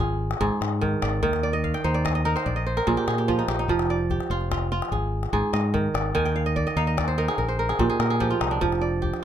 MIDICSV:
0, 0, Header, 1, 4, 480
1, 0, Start_track
1, 0, Tempo, 410397
1, 1441, Time_signature, 12, 3, 24, 8
1, 10807, End_track
2, 0, Start_track
2, 0, Title_t, "Kora"
2, 0, Program_c, 0, 46
2, 0, Note_on_c, 0, 65, 82
2, 0, Note_on_c, 0, 68, 67
2, 471, Note_off_c, 0, 68, 0
2, 475, Note_on_c, 0, 44, 90
2, 475, Note_on_c, 0, 68, 66
2, 952, Note_on_c, 0, 51, 85
2, 1193, Note_on_c, 0, 74, 67
2, 1420, Note_off_c, 0, 51, 0
2, 1434, Note_on_c, 0, 51, 95
2, 1500, Note_off_c, 0, 44, 0
2, 1526, Note_off_c, 0, 65, 0
2, 1671, Note_off_c, 0, 74, 0
2, 1676, Note_on_c, 0, 74, 69
2, 1791, Note_on_c, 0, 75, 77
2, 1916, Note_on_c, 0, 77, 69
2, 2036, Note_on_c, 0, 79, 78
2, 2107, Note_off_c, 0, 68, 0
2, 2155, Note_on_c, 0, 63, 77
2, 2156, Note_on_c, 0, 72, 71
2, 2226, Note_off_c, 0, 74, 0
2, 2274, Note_on_c, 0, 74, 73
2, 2344, Note_off_c, 0, 75, 0
2, 2393, Note_on_c, 0, 75, 70
2, 2511, Note_off_c, 0, 75, 0
2, 2516, Note_on_c, 0, 75, 66
2, 2586, Note_off_c, 0, 74, 0
2, 2628, Note_off_c, 0, 63, 0
2, 2633, Note_on_c, 0, 63, 82
2, 2634, Note_on_c, 0, 70, 74
2, 2752, Note_off_c, 0, 72, 0
2, 2756, Note_on_c, 0, 72, 65
2, 2875, Note_on_c, 0, 74, 66
2, 2941, Note_off_c, 0, 51, 0
2, 2946, Note_off_c, 0, 63, 0
2, 2946, Note_off_c, 0, 75, 0
2, 2993, Note_on_c, 0, 75, 66
2, 3084, Note_off_c, 0, 77, 0
2, 3112, Note_off_c, 0, 72, 0
2, 3117, Note_on_c, 0, 72, 69
2, 3126, Note_off_c, 0, 79, 0
2, 3234, Note_off_c, 0, 70, 0
2, 3239, Note_on_c, 0, 70, 77
2, 3355, Note_on_c, 0, 46, 82
2, 3357, Note_on_c, 0, 68, 73
2, 3476, Note_on_c, 0, 67, 75
2, 3591, Note_off_c, 0, 68, 0
2, 3596, Note_on_c, 0, 68, 71
2, 3716, Note_off_c, 0, 67, 0
2, 3721, Note_on_c, 0, 67, 66
2, 3838, Note_on_c, 0, 65, 74
2, 3839, Note_on_c, 0, 53, 75
2, 3960, Note_on_c, 0, 63, 70
2, 4031, Note_off_c, 0, 74, 0
2, 4070, Note_off_c, 0, 67, 0
2, 4075, Note_on_c, 0, 67, 68
2, 4145, Note_off_c, 0, 68, 0
2, 4196, Note_off_c, 0, 63, 0
2, 4200, Note_on_c, 0, 63, 73
2, 4245, Note_off_c, 0, 75, 0
2, 4305, Note_off_c, 0, 53, 0
2, 4319, Note_on_c, 0, 53, 91
2, 4382, Note_off_c, 0, 46, 0
2, 4506, Note_off_c, 0, 72, 0
2, 4562, Note_on_c, 0, 74, 64
2, 4632, Note_off_c, 0, 63, 0
2, 4727, Note_off_c, 0, 70, 0
2, 4798, Note_off_c, 0, 67, 0
2, 4803, Note_on_c, 0, 67, 62
2, 5033, Note_off_c, 0, 65, 0
2, 5038, Note_on_c, 0, 65, 79
2, 5273, Note_off_c, 0, 65, 0
2, 5278, Note_on_c, 0, 65, 67
2, 5513, Note_off_c, 0, 65, 0
2, 5517, Note_on_c, 0, 65, 86
2, 5754, Note_on_c, 0, 68, 64
2, 5822, Note_off_c, 0, 53, 0
2, 5824, Note_off_c, 0, 67, 0
2, 5858, Note_off_c, 0, 74, 0
2, 6228, Note_off_c, 0, 68, 0
2, 6233, Note_on_c, 0, 68, 75
2, 6234, Note_on_c, 0, 44, 81
2, 6469, Note_on_c, 0, 75, 69
2, 6710, Note_on_c, 0, 51, 78
2, 6952, Note_on_c, 0, 74, 62
2, 7176, Note_off_c, 0, 51, 0
2, 7189, Note_on_c, 0, 51, 94
2, 7191, Note_on_c, 0, 80, 78
2, 7261, Note_off_c, 0, 44, 0
2, 7288, Note_off_c, 0, 65, 0
2, 7314, Note_on_c, 0, 79, 71
2, 7384, Note_off_c, 0, 68, 0
2, 7434, Note_on_c, 0, 77, 68
2, 7551, Note_off_c, 0, 75, 0
2, 7556, Note_on_c, 0, 75, 78
2, 7626, Note_off_c, 0, 74, 0
2, 7673, Note_on_c, 0, 74, 78
2, 7792, Note_off_c, 0, 75, 0
2, 7797, Note_on_c, 0, 75, 74
2, 7911, Note_off_c, 0, 77, 0
2, 7914, Note_on_c, 0, 63, 92
2, 7916, Note_on_c, 0, 77, 79
2, 7984, Note_off_c, 0, 74, 0
2, 8032, Note_off_c, 0, 75, 0
2, 8037, Note_on_c, 0, 75, 76
2, 8157, Note_on_c, 0, 74, 77
2, 8244, Note_off_c, 0, 80, 0
2, 8276, Note_on_c, 0, 72, 74
2, 8391, Note_off_c, 0, 63, 0
2, 8395, Note_on_c, 0, 63, 79
2, 8398, Note_on_c, 0, 70, 74
2, 8404, Note_off_c, 0, 79, 0
2, 8465, Note_off_c, 0, 74, 0
2, 8518, Note_on_c, 0, 68, 73
2, 8627, Note_off_c, 0, 70, 0
2, 8632, Note_on_c, 0, 70, 64
2, 8699, Note_off_c, 0, 51, 0
2, 8750, Note_off_c, 0, 72, 0
2, 8754, Note_on_c, 0, 72, 68
2, 8873, Note_off_c, 0, 70, 0
2, 8878, Note_on_c, 0, 70, 74
2, 8993, Note_off_c, 0, 68, 0
2, 8998, Note_on_c, 0, 68, 75
2, 9084, Note_off_c, 0, 77, 0
2, 9114, Note_on_c, 0, 67, 75
2, 9115, Note_on_c, 0, 46, 88
2, 9230, Note_off_c, 0, 68, 0
2, 9235, Note_on_c, 0, 68, 83
2, 9289, Note_off_c, 0, 75, 0
2, 9351, Note_off_c, 0, 70, 0
2, 9356, Note_on_c, 0, 70, 79
2, 9472, Note_off_c, 0, 68, 0
2, 9477, Note_on_c, 0, 68, 74
2, 9547, Note_off_c, 0, 67, 0
2, 9594, Note_on_c, 0, 53, 79
2, 9597, Note_on_c, 0, 67, 75
2, 9713, Note_on_c, 0, 65, 76
2, 9828, Note_off_c, 0, 63, 0
2, 9833, Note_on_c, 0, 63, 71
2, 9953, Note_on_c, 0, 62, 76
2, 10059, Note_off_c, 0, 53, 0
2, 10073, Note_on_c, 0, 53, 95
2, 10137, Note_off_c, 0, 46, 0
2, 10143, Note_off_c, 0, 72, 0
2, 10309, Note_on_c, 0, 74, 67
2, 10379, Note_off_c, 0, 63, 0
2, 10544, Note_off_c, 0, 67, 0
2, 10549, Note_on_c, 0, 67, 67
2, 10619, Note_off_c, 0, 68, 0
2, 10786, Note_off_c, 0, 65, 0
2, 10807, Note_off_c, 0, 53, 0
2, 10807, Note_off_c, 0, 62, 0
2, 10807, Note_off_c, 0, 67, 0
2, 10807, Note_off_c, 0, 70, 0
2, 10807, Note_off_c, 0, 74, 0
2, 10807, End_track
3, 0, Start_track
3, 0, Title_t, "Fingered electric bass"
3, 0, Program_c, 1, 33
3, 0, Note_on_c, 1, 32, 100
3, 383, Note_off_c, 1, 32, 0
3, 472, Note_on_c, 1, 32, 110
3, 572, Note_off_c, 1, 32, 0
3, 713, Note_on_c, 1, 44, 97
3, 1103, Note_off_c, 1, 44, 0
3, 1201, Note_on_c, 1, 32, 86
3, 1395, Note_off_c, 1, 32, 0
3, 1443, Note_on_c, 1, 39, 97
3, 2023, Note_off_c, 1, 39, 0
3, 2156, Note_on_c, 1, 39, 100
3, 2739, Note_off_c, 1, 39, 0
3, 2878, Note_on_c, 1, 34, 92
3, 3267, Note_off_c, 1, 34, 0
3, 3362, Note_on_c, 1, 34, 99
3, 3459, Note_off_c, 1, 34, 0
3, 3597, Note_on_c, 1, 46, 95
3, 3986, Note_off_c, 1, 46, 0
3, 4070, Note_on_c, 1, 34, 80
3, 4269, Note_off_c, 1, 34, 0
3, 4306, Note_on_c, 1, 29, 103
3, 4893, Note_off_c, 1, 29, 0
3, 5028, Note_on_c, 1, 29, 101
3, 5613, Note_off_c, 1, 29, 0
3, 5749, Note_on_c, 1, 32, 92
3, 6141, Note_off_c, 1, 32, 0
3, 6228, Note_on_c, 1, 32, 96
3, 6331, Note_off_c, 1, 32, 0
3, 6469, Note_on_c, 1, 44, 94
3, 6861, Note_off_c, 1, 44, 0
3, 6950, Note_on_c, 1, 32, 82
3, 7148, Note_off_c, 1, 32, 0
3, 7191, Note_on_c, 1, 39, 94
3, 7775, Note_off_c, 1, 39, 0
3, 7910, Note_on_c, 1, 39, 98
3, 8494, Note_off_c, 1, 39, 0
3, 8630, Note_on_c, 1, 34, 94
3, 9020, Note_off_c, 1, 34, 0
3, 9109, Note_on_c, 1, 34, 97
3, 9210, Note_off_c, 1, 34, 0
3, 9350, Note_on_c, 1, 46, 105
3, 9740, Note_off_c, 1, 46, 0
3, 9837, Note_on_c, 1, 36, 86
3, 10030, Note_off_c, 1, 36, 0
3, 10073, Note_on_c, 1, 29, 101
3, 10654, Note_off_c, 1, 29, 0
3, 10807, End_track
4, 0, Start_track
4, 0, Title_t, "Calabash"
4, 360, Note_on_c, 9, 38, 58
4, 477, Note_off_c, 9, 38, 0
4, 480, Note_on_c, 9, 36, 71
4, 597, Note_off_c, 9, 36, 0
4, 724, Note_on_c, 9, 38, 66
4, 841, Note_off_c, 9, 38, 0
4, 963, Note_on_c, 9, 36, 74
4, 963, Note_on_c, 9, 38, 24
4, 1080, Note_off_c, 9, 36, 0
4, 1080, Note_off_c, 9, 38, 0
4, 1198, Note_on_c, 9, 38, 72
4, 1315, Note_off_c, 9, 38, 0
4, 1433, Note_on_c, 9, 36, 74
4, 1549, Note_off_c, 9, 36, 0
4, 1558, Note_on_c, 9, 38, 53
4, 1675, Note_off_c, 9, 38, 0
4, 1922, Note_on_c, 9, 36, 66
4, 2038, Note_off_c, 9, 36, 0
4, 2041, Note_on_c, 9, 38, 51
4, 2158, Note_off_c, 9, 38, 0
4, 2287, Note_on_c, 9, 38, 21
4, 2404, Note_off_c, 9, 38, 0
4, 2406, Note_on_c, 9, 36, 68
4, 2406, Note_on_c, 9, 38, 73
4, 2523, Note_off_c, 9, 36, 0
4, 2523, Note_off_c, 9, 38, 0
4, 2649, Note_on_c, 9, 38, 21
4, 2766, Note_off_c, 9, 38, 0
4, 2770, Note_on_c, 9, 38, 57
4, 2887, Note_off_c, 9, 38, 0
4, 2894, Note_on_c, 9, 36, 65
4, 3007, Note_on_c, 9, 38, 20
4, 3011, Note_off_c, 9, 36, 0
4, 3124, Note_off_c, 9, 38, 0
4, 3243, Note_on_c, 9, 38, 51
4, 3359, Note_off_c, 9, 38, 0
4, 3359, Note_on_c, 9, 36, 66
4, 3359, Note_on_c, 9, 38, 20
4, 3476, Note_off_c, 9, 36, 0
4, 3476, Note_off_c, 9, 38, 0
4, 3600, Note_on_c, 9, 38, 66
4, 3717, Note_off_c, 9, 38, 0
4, 3844, Note_on_c, 9, 36, 70
4, 3961, Note_off_c, 9, 36, 0
4, 3961, Note_on_c, 9, 38, 20
4, 4076, Note_off_c, 9, 38, 0
4, 4076, Note_on_c, 9, 38, 66
4, 4193, Note_off_c, 9, 38, 0
4, 4317, Note_on_c, 9, 36, 62
4, 4434, Note_off_c, 9, 36, 0
4, 4437, Note_on_c, 9, 38, 54
4, 4554, Note_off_c, 9, 38, 0
4, 4560, Note_on_c, 9, 38, 20
4, 4677, Note_off_c, 9, 38, 0
4, 4796, Note_on_c, 9, 36, 69
4, 4913, Note_off_c, 9, 36, 0
4, 4918, Note_on_c, 9, 38, 50
4, 5035, Note_off_c, 9, 38, 0
4, 5158, Note_on_c, 9, 38, 22
4, 5275, Note_off_c, 9, 38, 0
4, 5282, Note_on_c, 9, 36, 66
4, 5282, Note_on_c, 9, 38, 70
4, 5399, Note_off_c, 9, 36, 0
4, 5399, Note_off_c, 9, 38, 0
4, 5520, Note_on_c, 9, 38, 22
4, 5637, Note_off_c, 9, 38, 0
4, 5641, Note_on_c, 9, 38, 51
4, 5758, Note_off_c, 9, 38, 0
4, 5762, Note_on_c, 9, 36, 63
4, 5879, Note_off_c, 9, 36, 0
4, 6117, Note_on_c, 9, 38, 50
4, 6234, Note_off_c, 9, 38, 0
4, 6234, Note_on_c, 9, 36, 65
4, 6351, Note_off_c, 9, 36, 0
4, 6476, Note_on_c, 9, 38, 68
4, 6593, Note_off_c, 9, 38, 0
4, 6717, Note_on_c, 9, 36, 73
4, 6717, Note_on_c, 9, 38, 22
4, 6834, Note_off_c, 9, 36, 0
4, 6834, Note_off_c, 9, 38, 0
4, 6959, Note_on_c, 9, 38, 72
4, 7076, Note_off_c, 9, 38, 0
4, 7201, Note_on_c, 9, 36, 65
4, 7318, Note_off_c, 9, 36, 0
4, 7325, Note_on_c, 9, 38, 50
4, 7441, Note_off_c, 9, 38, 0
4, 7441, Note_on_c, 9, 38, 22
4, 7558, Note_off_c, 9, 38, 0
4, 7683, Note_on_c, 9, 36, 72
4, 7799, Note_off_c, 9, 36, 0
4, 7810, Note_on_c, 9, 38, 47
4, 7927, Note_off_c, 9, 38, 0
4, 8039, Note_on_c, 9, 38, 21
4, 8155, Note_off_c, 9, 38, 0
4, 8165, Note_on_c, 9, 36, 67
4, 8165, Note_on_c, 9, 38, 72
4, 8281, Note_off_c, 9, 36, 0
4, 8281, Note_off_c, 9, 38, 0
4, 8399, Note_on_c, 9, 38, 23
4, 8516, Note_off_c, 9, 38, 0
4, 8520, Note_on_c, 9, 38, 58
4, 8637, Note_off_c, 9, 38, 0
4, 8641, Note_on_c, 9, 36, 66
4, 8758, Note_off_c, 9, 36, 0
4, 8997, Note_on_c, 9, 38, 52
4, 9114, Note_off_c, 9, 38, 0
4, 9114, Note_on_c, 9, 36, 72
4, 9231, Note_off_c, 9, 36, 0
4, 9356, Note_on_c, 9, 38, 69
4, 9473, Note_off_c, 9, 38, 0
4, 9598, Note_on_c, 9, 36, 72
4, 9598, Note_on_c, 9, 38, 23
4, 9715, Note_off_c, 9, 36, 0
4, 9715, Note_off_c, 9, 38, 0
4, 9838, Note_on_c, 9, 38, 74
4, 9955, Note_off_c, 9, 38, 0
4, 10081, Note_on_c, 9, 36, 64
4, 10198, Note_off_c, 9, 36, 0
4, 10204, Note_on_c, 9, 38, 54
4, 10321, Note_off_c, 9, 38, 0
4, 10327, Note_on_c, 9, 38, 22
4, 10444, Note_off_c, 9, 38, 0
4, 10565, Note_on_c, 9, 36, 68
4, 10682, Note_off_c, 9, 36, 0
4, 10685, Note_on_c, 9, 38, 53
4, 10802, Note_off_c, 9, 38, 0
4, 10807, End_track
0, 0, End_of_file